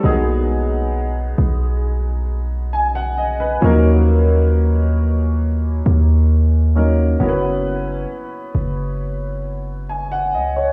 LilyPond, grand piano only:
\new Staff \with { instrumentName = "Grand piano" } { \time 4/4 \key fis \mixolydian \tempo 4 = 67 << { r2. gis''16 fis''16 dis''16 b'16~ | b'16 r2. r8. | r2. gis''16 fis''16 dis''16 cis''16 | } \\ { <fis gis ais b dis' gis'>1 | <eis fis ais cis' dis' ais'>2.~ <eis fis ais cis' dis' ais'>8 <fis ais cis' dis' ais'>8 | <fis b cis' e' ais' b'>1 | } >> }